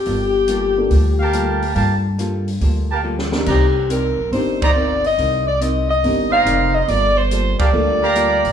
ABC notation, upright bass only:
X:1
M:4/4
L:1/8
Q:"Swing" 1/4=141
K:Gm
V:1 name="Upright bass" clef=bass
G,,,4 D,,4 | G,,4 D,,4 | C,,3 =B,,, G,,,4 | C,,4 G,,,2 F,,,2 |
G,,,3 z D,,3 A,,, |]